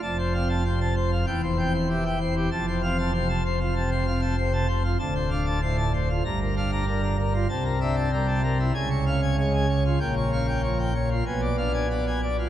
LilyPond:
<<
  \new Staff \with { instrumentName = "Pipe organ" } { \time 4/4 \key f \major \tempo 4 = 96 a''16 c''16 f''16 a''16 c''16 a''16 c''16 f'16 g''16 c''16 g''16 c''16 g'16 g''16 c''16 g'16 | a''16 c''16 f''16 a''16 c''16 a''16 c''16 f'16 a''16 c''16 f''16 a''16 c''16 a''16 c''16 f'16 | \key g \dorian a''16 c''16 f''16 a''16 c''16 a''16 c''16 f'16 bes''16 bes'16 f''16 bes''16 bes'16 bes''16 bes'16 f'16 | a''16 bes'16 e''16 a''16 bes'16 a''16 bes'16 e'16 aes''16 des''16 f''16 aes''16 des''16 aes''16 des''16 f'16 |
g''16 des''16 f''16 g''16 des''16 g''16 des''16 f'16 gis''16 d''16 f''16 gis''16 d''16 gis''16 d''16 f'16 | }
  \new Staff \with { instrumentName = "Pipe organ" } { \clef bass \time 4/4 \key f \major << { f,8 c'8 c8 r8 e,8 c'8 e8 r8 | f,8 c'8 c8 r8 c8 c'8 c8 r8 | \key g \dorian d,8 d'8 a,8 r8 g,8 d'8 d8 r8 | c8 d'8 g8 r8 des8 des'8 aes8 r8 |
bes,8 des'8 f8 r8 b,8 d'8 b8 r8 | } \\ { f,,2 e,,2 | f,,1 | d,,2 g,,2 | c,2 des,2 |
bes,,2 b,,2 | } >> }
>>